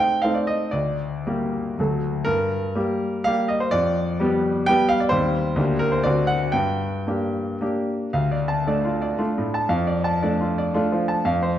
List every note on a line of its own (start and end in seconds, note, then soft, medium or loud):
0.00 0.20 A3 soft
0.00 0.20 C4 soft
0.00 0.21 D#4 soft
0.00 0.22 G5 medium
0.22 0.69 A3 soft
0.22 0.69 C4 soft
0.22 0.70 D#4 soft
0.22 0.35 F5 medium
0.34 0.48 D5 soft
0.47 0.73 D#5 medium
0.71 1.23 D2 soft
0.71 2.02 D5 medium
1.27 1.75 G3 soft
1.27 1.75 A#3 soft
1.27 1.76 G4 soft
1.79 2.26 D2 soft
1.79 2.23 F#3 soft
1.79 2.24 A3 soft
1.79 2.24 A4 soft
2.25 2.74 G2 soft
2.25 3.25 A#4 medium
2.75 3.22 G3 soft
2.75 3.22 A#3 soft
2.75 3.23 G4 soft
3.24 3.68 G3 soft
3.24 3.68 A#3 soft
3.24 3.68 G4 soft
3.24 3.49 F5 medium
3.48 3.60 D#5 medium
3.60 3.72 C5 medium
3.71 4.18 F2 medium
3.71 4.67 D5 medium
4.20 4.64 G3 soft
4.20 4.65 B3 soft
4.20 4.65 G4 soft
4.66 5.08 G3 soft
4.66 5.08 B3 soft
4.66 5.08 G4 medium
4.66 4.90 G5 loud
4.89 5.00 F5 medium
5.00 5.11 D5 medium
5.09 5.55 D#2 medium
5.09 5.52 G3 soft
5.09 5.53 C4 soft
5.09 5.53 G4 soft
5.09 5.79 C5 medium
5.56 6.03 D2 medium
5.56 6.00 A#3 soft
5.56 6.01 D4 soft
5.56 6.01 G4 soft
5.79 5.92 A#4 medium
5.92 6.04 C5 medium
6.03 6.53 D2 medium
6.03 6.51 C4 soft
6.03 6.51 D4 soft
6.03 6.51 F#4 soft
6.03 6.29 D5 medium
6.27 6.54 F#5 medium
6.52 7.06 G2 soft
6.52 7.86 G5 medium
7.07 7.57 A#3 soft
7.07 7.57 D4 soft
7.07 7.58 G4 soft
7.61 8.09 A#3 soft
7.61 8.09 D4 soft
7.61 8.09 G4 soft
8.13 8.65 D2 medium
8.13 8.41 F5 medium
8.31 8.60 D5 medium
8.48 8.78 A5 medium
8.67 9.16 A3 soft
8.67 9.16 D4 soft
8.67 8.96 D5 medium
8.85 9.13 F4 soft
9.02 9.29 D5 medium
9.19 9.66 A3 soft
9.19 9.66 D4 soft
9.19 9.46 F4 medium
9.38 9.64 A2 soft
9.54 9.71 A5 soft
9.69 10.20 F2 medium
9.69 9.97 F5 medium
9.87 10.15 D5 medium
10.04 10.33 A5 medium
10.23 10.71 A3 soft
10.23 10.71 D4 soft
10.23 10.51 D5 medium
10.41 10.68 F4 medium
10.58 10.85 D5 medium
10.74 11.22 A3 soft
10.74 11.22 D4 soft
10.74 11.02 F4 medium
10.92 11.19 F3 medium
11.08 11.26 A5 medium
11.25 11.59 F2 medium
11.25 11.54 F5 medium
11.43 11.59 C5 medium